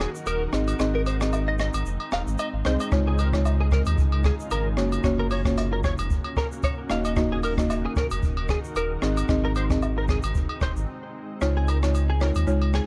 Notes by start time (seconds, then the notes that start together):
Already playing: D#3 D#4 F#4 A#4
0.00 G#4, cross-stick, shaker
0.15 shaker
0.26 D#1 A#4, high agogo, shaker
0.53 G#1 G#3 C4 D#4 G#4 D#5, cross-stick, shaker
0.68 high agogo, shaker
0.79 G#1 C4 D#4 G#4 D#5, cross-stick, shaker
0.95 A#4
1.06 C5, high agogo, shaker
1.20 C4 D#4 G#4 D#5, cross-stick, shaker
1.33 high agogo, low woodblock, shaker
1.48 D#5
1.59 D#5, cross-stick, shaker
1.73 G#1, high agogo, shaker
1.86 F1, shaker
2.00 high agogo
2.12 D#1 F5, cross-stick, shaker
2.27 G#1, shaker
2.39 D#5, high agogo, shaker
2.53 G#1
2.65 C2 C4 D#4 G#4 C5 D#5, cross-stick, shaker
2.80 D#5, high agogo, shaker
2.92 C#2 C#3 G#3 D#4 F4 C#5, kick, cross-stick, shaker
3.07 G#4
3.18 A#4, high agogo, shaker
3.33 G#3 D#4 F4 C#5, kick, cross-stick, shaker
3.45 high agogo, low woodblock, shaker
3.60 G#4
3.71 A#4, kick, cross-stick, shaker
3.86 D#2, high agogo, shaker
3.98 C#2, kick, shaker
4.12 high agogo
4.24 G#4, kick, cross-stick, shaker
4.40 shaker
4.51 G#1 A#4, high agogo, shaker
4.77 F#1 A#3 C#4 F#4 C#5, cross-stick, shaker
4.92 high agogo, shaker
5.04 F#1 A#3 C#4 F#4 C#5, kick, cross-stick, shaker
5.20 A#4
5.31 C#5, open hi-hat, high agogo, shaker
5.45 A#3 C#4 F#4 C#5, kick, cross-stick, shaker
5.57 hi-hat pedal, high agogo, low woodblock, shaker
5.73 A#4
5.84 C#5, kick, cross-stick, shaker
5.98 F1, high agogo, shaker
6.11 kick, shaker
6.25 high agogo
6.37 A#4, kick, cross-stick, shaker
6.52 shaker
6.63 C#5, kick, high agogo, shaker
6.90 D#1 D#3 A#3 D#4 F#4 A#4 D#5 F5, cross-stick, shaker
7.05 D#5, high agogo, shaker
7.16 A#3 D#4 F#4 D#5, kick, cross-stick, shaker
7.32 G#4
7.43 A#4, open hi-hat, high agogo, shaker
7.57 A#3 D#4 F#4 D#5, kick, cross-stick, shaker
7.70 hi-hat pedal, high agogo, low woodblock, shaker
7.85 G#4
7.96 A#4, kick, cross-stick, shaker
8.10 F1, high agogo, shaker
8.23 D#1, kick, shaker
8.37 high agogo
8.49 G#4, kick, cross-stick, shaker
8.64 shaker
8.76 D#1 A#4, high agogo, shaker
9.02 G#1 G#3 C4 D#4 G#4 D#5, cross-stick, shaker
9.17 high agogo, shaker
9.28 G#1 C4 D#4 G#4 D#5, kick, cross-stick, shaker
9.44 A#4
9.55 C5, high agogo, shaker
9.70 C4 D#4 G#4 D#5, kick, cross-stick, shaker
9.82 high agogo, low woodblock, shaker
9.98 A#4
10.08 G#4, kick, cross-stick, shaker
10.23 G#1, high agogo, shaker
10.35 F1, kick, shaker
10.49 high agogo
10.61 D#1 C5, kick, cross-stick, shaker
10.76 G#1, shaker
11.41 C#2 G#3 D#4 F4 C#5, cross-stick, shaker
11.57 G#4
11.68 A#4, high agogo, shaker
11.82 G#3 D#4 F4 C#5, cross-stick, shaker
11.95 high agogo, shaker
12.10 G#4
12.21 G#3 D#4 F4 A#4 C#5, cross-stick, shaker
12.35 D#2, high agogo, shaker
12.47 C#2 G#3 D#4 F4 C#5, shaker
12.62 high agogo
12.74 G#4, cross-stick, shaker